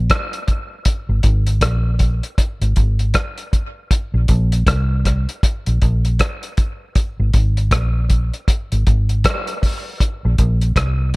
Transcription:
0.10 kick, cross-stick, closed hi-hat
0.33 closed hi-hat
0.48 kick, closed hi-hat
0.85 kick, closed hi-hat
1.09 fingered electric bass G#1
1.23 fingered electric bass G#1, kick, closed hi-hat
1.47 closed hi-hat
1.61 fingered electric bass A#1, kick, cross-stick, closed hi-hat
1.99 kick, closed hi-hat
2.23 closed hi-hat
2.38 kick, closed hi-hat
2.61 fingered electric bass G#1, closed hi-hat
2.76 fingered electric bass G#1, kick, closed hi-hat
2.99 closed hi-hat
3.14 kick, cross-stick, closed hi-hat
3.38 closed hi-hat
3.53 kick, closed hi-hat
3.91 kick, closed hi-hat
4.14 fingered electric bass A#1
4.28 fingered electric bass A#1, kick, closed hi-hat
4.52 closed hi-hat
4.67 fingered electric bass C2, kick, cross-stick, closed hi-hat
5.05 kick, cross-stick, closed hi-hat
5.29 closed hi-hat
5.43 kick, closed hi-hat
5.66 fingered electric bass A#1, closed hi-hat
5.82 fingered electric bass A#1, kick, closed hi-hat
6.05 closed hi-hat
6.19 kick, cross-stick, closed hi-hat
6.43 closed hi-hat
6.57 kick, closed hi-hat
6.95 kick, closed hi-hat
7.20 fingered electric bass G#1
7.34 fingered electric bass G#1, kick, closed hi-hat
7.57 closed hi-hat
7.71 fingered electric bass A#1, kick, cross-stick, closed hi-hat
8.10 kick, closed hi-hat
8.34 closed hi-hat
8.48 kick, closed hi-hat
8.72 fingered electric bass G#1, closed hi-hat
8.87 fingered electric bass G#1, kick, closed hi-hat
9.09 closed hi-hat
9.24 kick, cross-stick, closed hi-hat
9.47 closed hi-hat
9.63 kick, open hi-hat
10.00 kick, closed hi-hat
10.25 fingered electric bass A#1
10.38 fingered electric bass A#1, kick, closed hi-hat
10.61 closed hi-hat
10.76 fingered electric bass C2, kick, cross-stick, closed hi-hat

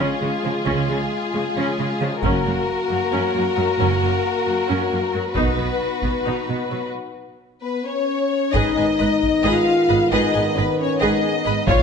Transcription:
Already playing: french horn section G#3 F4, violin section F4 G#4
0.00 viola section C#4
0.20 cello section C#3, viola section G#3
0.43 cello section C#3, viola section F3
0.66 double bass section C#2, cello section C#3, viola section C#4
0.89 cello section C#3, viola section G#3
1.34 cello section C#3, viola section G#3
1.57 cello section C#3, viola section C#4
1.79 cello section C#3, viola section G#3
2.01 cello section C#3, viola section F3
2.22 double bass section F#1, cello section F#2, french horn section A#3 F#4, viola section C#4, violin section F#4 A#4, taiko
2.45 cello section F#2, viola section A#3
2.90 cello section F#2, viola section A#3
3.12 cello section F#2, viola section C#4
3.34 cello section F#2, viola section A#3
3.57 cello section F#2, viola section F#3
3.78 double bass section F#1, cello section F#2, viola section C#4
4.01 cello section F#2, viola section A#3
4.46 cello section F#2, viola section A#3
4.68 cello section F#2, viola section C#4
4.91 cello section F#2, viola section A#3
5.14 cello section F#2, viola section F#3
5.34 double bass section B1, cello section B2, viola section D#4, french horn section D#4, violin section F#4 B4, taiko
5.38 french horn section B3
5.57 cello section B2, viola section B3
6.02 cello section B2, viola section B3, taiko
6.25 cello section B2, viola section D#4
6.48 cello section B2, viola section B3
6.70 cello section B2, viola section F#3
7.61 french horn section B3, violin section B4
7.84 french horn section C#4, violin section C#5
8.52 double bass section G#1, cello section G#2, trombone section D#3 B3, french horn section D#4, violin section G#4 D#5, viola section G#4 B4, taiko
8.76 double bass section G#1, cello section G#2, viola section G#4 B4, violin section B4 G#5
8.97 double bass section G#1, cello section G#2, viola section G#4 B4, violin section D#5 B5
9.23 taiko
9.43 double bass section G#1, cello section G#2, french horn section F4, violin section G#4 D#5 F5, viola section G#4 B4
9.88 double bass section G#1, cello section G#2, viola section G#4 B4, violin section D#5 B5
10.11 double bass section G#1, cello section G#2, french horn section D#4, violin section G#4 D#5, viola section G#4 B4
10.34 double bass section G#1, cello section G#2, viola section G#4 B4, violin section B4 G#5
10.56 double bass section G#1, cello section G#2, french horn section B3, viola section G#4 B4, violin section B4 D#5 B5
10.80 french horn section C#4, violin section C#5
11.00 double bass section G#1, cello section G#2, french horn section D#4, violin section G#4 D#5, viola section G#4 B4
11.45 double bass section G#1, cello section G#2, viola section G#4 B4, violin section D#5 B5
11.67 double bass section A#1, cello section A#2, trombone section C#3 A#3, violin section F4 C#5 F5, french horn section F4, viola section C#5, taiko

